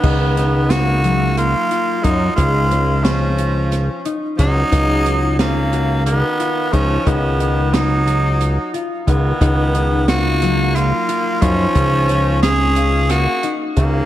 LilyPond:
<<
  \new Staff \with { instrumentName = "Harp" } { \time 7/8 \key ges \major \tempo 4 = 90 ees'8 ees'4 ges4 f'8 ees'8 | des'8 des'4 f'4 ees'8 des'8 | ees'8 ees'4 ges'4 f'8 ees'8 | ees'8 ees'4 ges'4 f'8 ees'8 |
ees'8 ees'4 ges4 f'8 ees'8 | des'8 des'4 f''4 ees'8 des'8 | }
  \new Staff \with { instrumentName = "Tenor saxophone" } { \time 7/8 \key ges \major ces'4 ges'4 f'4 ees'8 | f'4 des'4. r8 ees'8~ | ees'4 bes4 ces'4 des'8 | ces'4 ees'4. r8 ces'8~ |
ces'4 ges'4 f'4 des'8~ | des'4 aes'4 ges'8 r8 bes8 | }
  \new Staff \with { instrumentName = "Alto saxophone" } { \clef bass \time 7/8 \key ges \major ees4 bes4 bes4 ges8 | aes4 f4. r8 ges8~ | ges4 des4 ees4 f8 | ees4 ges4. r8 ees8~ |
ees4 bes4 bes4 f8~ | f4 des'4 bes8 r8 des8 | }
  \new Staff \with { instrumentName = "Analog synth bass" } { \clef bass \time 7/8 \key ges \major des,2. ges,8 | des,2. des,8 | des,2. des,8 | des,2. des,8 |
des,2. ges,8 | des,2. des,8 | }
  \new DrumStaff \with { instrumentName = "Drums" } \drummode { \time 7/8 <cymc bd>8 <hh sn>8 <hh sn>8 hh8 hh8 hh8 <hh bd>8 | <hh bd>8 hh8 <hh sn>8 hh8 <hh sn>8 hh8 <hh bd sn>8 | <hh bd>8 hh8 <hh sn>8 hh8 hh8 hh8 <hh bd>8 | <hh bd>8 hh8 <hh sn>8 hh8 hh8 hh8 <hh bd>8 |
<hh bd>8 hh8 <hh sn>8 <hh sn>8 hh8 hh8 <hh bd>8 | <hh bd>8 hh8 <hh sn>8 hh8 <hh sn>8 hh8 <hh bd>8 | }
>>